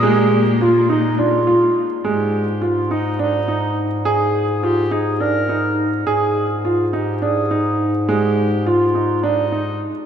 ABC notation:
X:1
M:7/8
L:1/8
Q:1/4=104
K:Bbmix
V:1 name="Clarinet"
G2 F E F2 z | G2 F E E2 z | A2 G A B2 z | A2 z G A2 z |
G2 F2 E2 z |]
V:2 name="Grand piano"
A,2 F E D F2 | A,2 F E D E2 | A2 F E D E2 | A2 F E D E2 |
A,2 F E D E2 |]
V:3 name="Cello"
B,6 z | z6 z | z6 z | z6 z |
z6 z |]
V:4 name="Bass clarinet" clef=bass
B,,6- B,, | A,,6- A,,- | A,,6- A,, | A,,6- A,,- |
A,,6- A,, |]